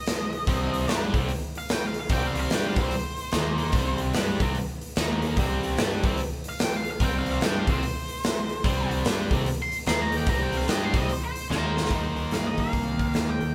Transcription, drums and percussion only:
0.06 snare, open hi-hat
0.33 open hi-hat
0.47 kick, open hi-hat
0.74 open hi-hat
0.88 snare, open hi-hat
1.14 kick, open hi-hat
1.28 open hi-hat
1.55 open hi-hat
1.69 snare, open hi-hat
1.94 open hi-hat
2.09 kick, open hi-hat
2.35 open hi-hat
2.50 snare, open hi-hat
2.76 kick, open hi-hat
2.91 open hi-hat
3.17 open hi-hat
3.32 snare, open hi-hat
3.58 open hi-hat
3.72 kick, open hi-hat
3.98 open hi-hat
4.13 snare, open hi-hat
4.40 kick, open hi-hat
4.55 open hi-hat
4.81 open hi-hat
4.96 snare, open hi-hat
5.22 open hi-hat
5.37 kick, open hi-hat
5.63 open hi-hat
5.77 snare, open hi-hat
6.03 kick, open hi-hat
6.17 open hi-hat
6.44 open hi-hat
6.59 snare, open hi-hat
6.85 open hi-hat
7.00 kick, open hi-hat
7.26 open hi-hat
7.41 snare, open hi-hat
7.67 kick, open hi-hat
7.83 open hi-hat
8.08 open hi-hat
8.24 snare, open hi-hat
8.49 open hi-hat
8.64 kick, open hi-hat
8.91 open hi-hat
9.05 snare, open hi-hat
9.31 kick, open hi-hat
9.46 open hi-hat
9.72 open hi-hat
9.86 snare, open hi-hat
10.12 open hi-hat
10.26 kick, open hi-hat
10.52 open hi-hat
10.61 snare
10.68 snare, open hi-hat
10.94 kick, open hi-hat
11.10 open hi-hat
11.36 open hi-hat
11.51 snare
11.77 snare
11.85 snare
11.90 kick, open hi-hat
12.17 open hi-hat
12.31 snare, open hi-hat
12.57 kick, open hi-hat
12.73 kick, open hi-hat
12.99 kick, open hi-hat
13.14 snare, open hi-hat
13.41 open hi-hat

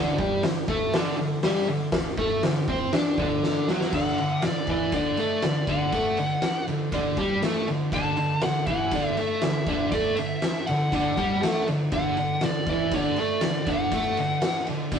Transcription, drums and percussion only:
0.19 kick
0.43 snare, open hi-hat
0.68 kick
0.93 snare, open hi-hat
1.43 snare, open hi-hat
1.92 kick, snare, open hi-hat
2.18 kick
2.43 snare, open hi-hat
2.68 kick
2.93 snare, open hi-hat
3.18 kick
3.43 snare
3.68 snare
3.81 snare
3.92 kick, crash
4.18 ride
4.42 snare, ride
4.67 kick, ride
4.92 kick, ride
5.17 ride
5.42 snare, ride
5.67 kick, ride
5.92 kick, ride
6.17 ride
6.42 snare, ride
6.68 ride
6.92 kick, ride
7.17 kick, ride
7.42 snare, ride
7.68 ride
7.92 kick, ride
8.17 ride
8.41 snare, ride
8.67 kick, ride
8.91 kick, ride
9.17 ride
9.41 snare, ride
9.67 kick, ride
9.92 kick, ride
10.17 ride
10.42 snare, ride
10.67 ride
10.92 kick, ride
11.17 kick, ride
11.43 snare, ride
11.67 ride
11.92 kick, ride
12.17 ride
12.41 snare, ride
12.66 kick, ride
12.91 kick, ride
13.16 ride
13.41 snare, ride
13.67 kick, ride
13.91 kick, ride
14.17 ride
14.42 snare, ride
14.67 ride
14.92 kick, ride

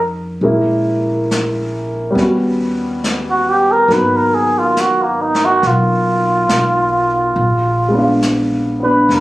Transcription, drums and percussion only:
0.44 brush sweep
1.31 snare, hi-hat pedal
2.17 brush sweep, snare
3.04 snare, hi-hat pedal
3.90 brush sweep, snare
4.77 snare, hi-hat pedal
5.35 snare
5.63 brush sweep, snare
6.49 snare, hi-hat pedal
7.36 brush sweep
8.22 snare, hi-hat pedal
9.10 brush sweep, snare

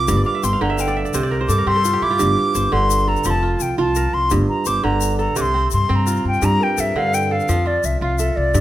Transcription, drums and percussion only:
0.08 shaker
0.43 shaker
0.78 shaker
0.87 shaker
1.06 shaker
1.14 shaker
1.49 shaker
1.85 shaker
2.19 shaker
2.55 shaker
2.90 shaker
3.16 shaker
3.24 shaker
3.60 shaker
3.95 shaker
4.30 shaker
4.65 shaker
5.01 shaker
5.19 shaker
5.36 shaker
5.71 shaker
6.07 shaker
6.16 shaker
6.33 shaker
6.42 shaker
6.78 shaker
7.14 shaker
7.22 shaker
7.40 shaker
7.48 shaker
7.83 shaker
8.19 shaker
8.55 shaker

